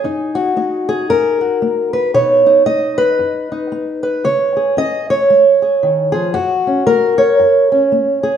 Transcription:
steel-string acoustic guitar
Already playing: G#4
0.04 F#2 D#4
0.35 F#4
0.56 A#3 D#4
0.89 G#4
1.09 F#2 A#4
1.41 F#4
1.62 A#3
1.93 B4
2.14 B2 B3 D#4 C#5
2.46 D#4
2.66 B3 D#5
2.98 B4
3.19 F#2
3.52 D#4
3.72 B3
4.03 B4
4.24 C#3 C#5
4.57 G#4
4.77 C#4 D#5
5.10 C#5
5.30 G#3
5.62 G#4
5.83 D#3
6.12 F3 G#4
6.34 F#2 F#4
6.67 C#4
6.87 A#3 A#4
7.18 C#5
7.40 F#2
7.72 C#4
7.92 A#3
8.23 G#4

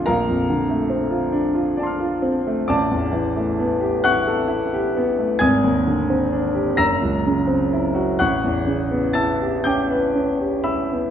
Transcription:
grand piano
0.06 A#1 A#4 F5 A#5
0.28 F2
0.49 D3
0.70 A3
0.90 C4
1.11 F4
1.32 D4
1.55 F4
1.77 D4 D5 A5
1.83 C6 F6
2.00 F4
2.22 C4
2.47 A3
2.68 A1 D5 A5 D6
2.91 E2
3.12 E3
3.36 A3
3.60 B3
3.80 G4
4.04 E4 F#5 C#6 F#6
4.27 A4
4.48 E4
4.73 G4
4.96 B3
5.19 A3
5.39 G#1 G#5 D#6 G#6
5.64 D#2
5.87 D3
6.10 C4
6.32 D4
6.55 G4
6.77 F#1 A#5 E6 A#6
7.02 C#2
7.26 C#3
7.47 C4
7.73 E4
7.95 F#4
8.19 A1 F#5 C#6 F#6
8.44 E2
8.67 C#3
8.91 B3
9.13 E4 A5 E6 A6
9.41 G4
9.64 C#4 G5 D6 G6
9.90 B4
10.15 C#4
10.40 G4
10.64 E4 E5 B5 E6
10.92 B3

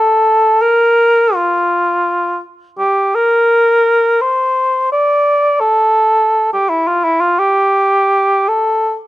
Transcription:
cor anglais
Already playing: A4
0.62 A#4
1.35 F4
2.78 G4
3.15 A#4
4.21 C5
4.92 D5
5.60 A4
6.53 G4
6.69 E4
6.87 F4
7.04 E4
7.21 F4
7.39 G4
8.48 A4

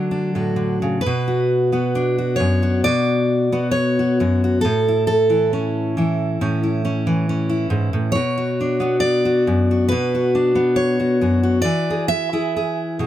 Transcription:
steel-string acoustic guitar
Already playing: D3 F#3 A3 D4 A4
0.11 D4
0.35 A2 F#4
0.56 D3
0.82 C#3
1.01 B4
1.06 B2
1.28 F#4
1.72 B3 F#4
1.95 D4
2.18 F#4
2.36 C#5
2.40 F#2
2.63 F#4
2.84 B2 D5
3.52 B3 F#4
3.71 C#5
3.99 F#4
4.20 F#2 F#4
4.44 F#4
4.61 A2 A4
4.88 E4
5.07 A4
5.30 E3 E4
5.53 C#4
5.97 E3 E4
6.41 A2 C#4
6.63 E4
6.85 C#4
7.07 E3
7.29 C#4
7.49 E4
7.70 G#2
7.93 A2
8.12 B2 C#5
8.38 F#4
8.61 D4
8.80 B3 F#4
9.00 D5
9.25 F#4
9.47 F#2
9.71 F#4
9.89 B2 B4
10.15 F#4
10.35 D4
10.55 B3
10.76 C#5
11.00 F#4
11.21 F#2 F#4
11.43 F#4
11.62 E3 D5
11.90 G#4
12.08 E5
12.33 E4 G#4
12.56 G#4
12.99 B2 G#4

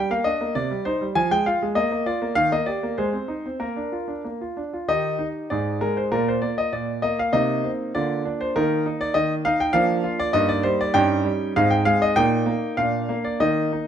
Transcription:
grand piano
Already playing: G3 G5
0.11 A#3 F5
0.24 D4 D#5
0.41 A#3
0.55 C3 D5
0.71 G3
0.85 D#4 C5
1.01 G3
1.15 F3 G#5
1.31 G#3 G5
1.46 F4 F5
1.63 G#3
1.75 A#3 D#5
1.92 A#3
2.06 F4 D5
2.22 A#3
2.35 D#3 F5
2.52 A#3 D#5
2.66 G4 D5
2.83 A#3
2.98 G#3 C5
3.13 C4
3.28 D#4
3.46 C4
3.60 A#3 A#4
3.76 D4
3.92 F4
4.08 D4
4.24 A#3
4.41 F4
4.57 D4
4.73 F4
4.88 D#3 D#4 G4 D#5
5.19 D#4
5.50 G#2 D#4 G#4 D5
5.81 G#3 A#4
5.97 C5
6.11 A#2 A#3 F4 A#4
6.28 C5
6.42 A#3 D5
6.58 D#5
6.73 A#2 D5
7.02 A#3 D#5
7.19 F5
7.33 C3 A#3 D#4 D#5
7.64 C4
7.95 D3 A#3 F4 D5
8.25 D4
8.41 C5
8.56 D#3 A#3 D#4 A#4
8.86 D#4
9.01 D5
9.14 D#3 D#5
9.45 D#4 F5
9.60 G5
9.73 F3 A#3 D4 F5
10.04 F4
10.20 D5
10.33 G2 A#3 D#4 D#5
10.49 D5
10.63 G3 C5
10.81 D5
10.94 G2 C#4 D#4 G5
11.25 G3
11.56 G#2 C4 D#4 F5
11.71 G5
11.85 G#3 F5
12.02 D#5
12.16 A#2 A#3 D#4 G5
12.46 A#3
12.77 A#2 A#3 D4 F5
13.09 A#3
13.24 D5
13.40 D#3 A#3 D#4 D#5
13.73 D#4

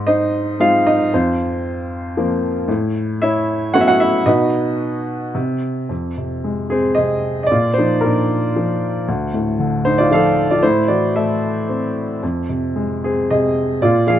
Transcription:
upright piano
Already playing: G#2
0.07 D#4 C5 D#5
0.60 G#3 C4 D#4 F4 F5
0.87 D#4 D#5
1.14 F2 C4 F4 C5
2.17 F3 A#3 C4
2.68 A2
3.22 E4 C#5 E5
3.74 A3 B3 C#4 F#4 F#5
3.81 E5
3.88 F#4 F#5
4.00 E4 E5
4.26 B2 D#4 F#4 B4 D#5
5.35 C3
5.89 F2
6.17 C3
6.44 G#3
6.70 C4 G#4
6.95 C3 G#4 D#5
7.43 D5 D#5
7.51 A#2 F4
7.74 C5
7.78 F3 D#4
8.01 A#2 A#4
8.05 D4
8.56 F3
9.08 D2
9.34 A2
9.59 D3
9.85 D#4 C5
9.98 F4 D5
10.11 F3 A4 F5
10.51 F4 D5
10.63 A2 E4 C5
10.88 E3 F#4 D5
11.16 A3 A4 E5
11.69 C4
12.23 F2
12.49 C3
12.76 G#3
13.04 C4 G#4
13.31 C3 G#4 D#5
13.82 A#2 F4 D5
14.07 F3 G#4 F5

